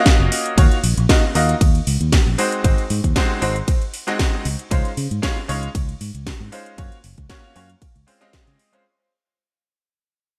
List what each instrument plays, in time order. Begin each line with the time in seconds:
Already playing: grand piano A#3 C#4 F4 F#4 D#5
0.06 kick, snare, closed hi-hat
0.20 fingered electric bass F#1
0.32 open hi-hat
0.46 closed hi-hat
0.57 fingered electric bass D#2, grand piano A#3 D#4 F4 F#4 C#5, kick, closed hi-hat, ride
0.72 closed hi-hat
0.84 fingered electric bass A#1, open hi-hat
0.97 fingered electric bass A#1, closed hi-hat
1.09 grand piano A#3 D#4 F4 F#4 D#5, kick, snare, closed hi-hat, ride
1.35 fingered electric bass D#2, grand piano A#3 D#4 F4 F#4 D#5, open hi-hat
1.49 closed hi-hat
1.61 fingered electric bass D#2, kick, closed hi-hat, ride
1.75 closed hi-hat
1.87 fingered electric bass C#2, open hi-hat
2.01 fingered electric bass D#2, closed hi-hat
2.12 kick, snare, closed hi-hat, ride
2.27 fingered electric bass A#1
2.38 grand piano G#3 C4 D#4 F#4 C5, open hi-hat
2.52 closed hi-hat
2.64 fingered electric bass G#1, grand piano G#3 C4 D#4 F#4 C5, kick, closed hi-hat, ride
2.78 closed hi-hat
2.90 fingered electric bass G#2, open hi-hat
3.04 fingered electric bass D#2, kick, closed hi-hat
3.16 grand piano G#3 C4 D#4 F#4 C5, kick, snare, closed hi-hat, ride
3.41 fingered electric bass G#1, grand piano G#3 C4 D#4 F#4 C5, open hi-hat
3.56 closed hi-hat
3.68 kick, closed hi-hat, ride
3.82 closed hi-hat
3.94 open hi-hat
4.07 grand piano G#3 C4 D#4 F#4 D#5, snare, closed hi-hat
4.19 kick, snare, closed hi-hat, ride
4.45 fingered electric bass C#2, open hi-hat
4.59 closed hi-hat
4.71 fingered electric bass C#2, grand piano G#3 C#4 D#4 F4 C5, kick, closed hi-hat, ride
4.85 closed hi-hat
4.97 fingered electric bass C#3, open hi-hat
5.11 fingered electric bass G#2, closed hi-hat
5.22 grand piano G#3 C#4 D#4 F4 C#5, kick, snare, closed hi-hat, ride
5.48 fingered electric bass C#2, grand piano G#3 C#4 D#4 F4 C#5, open hi-hat
5.63 closed hi-hat
5.75 fingered electric bass C#2, kick, closed hi-hat, ride
5.89 closed hi-hat
6.01 fingered electric bass G#2, open hi-hat
6.14 fingered electric bass C#2, closed hi-hat
6.27 kick, snare, closed hi-hat, ride
6.40 fingered electric bass G#2
6.52 grand piano G#3 C#4 D#4 F4 C5, open hi-hat
6.66 closed hi-hat
6.78 fingered electric bass F#2, grand piano A#3 C#4 F4 F#4 C#5, kick, closed hi-hat, ride
6.92 closed hi-hat
7.04 fingered electric bass F#1, open hi-hat
7.18 fingered electric bass C#2, kick, closed hi-hat
7.29 grand piano A#3 C#4 F4 F#4 C#5, kick, snare, closed hi-hat, ride
7.55 fingered electric bass F#2, grand piano A#3 C#4 F4 F#4 C#5, open hi-hat
7.70 closed hi-hat
7.82 kick, closed hi-hat, ride
7.96 fingered electric bass C#2, closed hi-hat
8.07 grand piano G#3 C4 C#4 F4 C5, open hi-hat
8.21 grand piano G#3 C4 C#4 F4 D#5, snare, closed hi-hat
8.33 kick, snare, closed hi-hat, ride
8.47 fingered electric bass C#3, closed hi-hat
8.59 open hi-hat
8.72 grand piano G#3 C4 C#4 F4 C5, closed hi-hat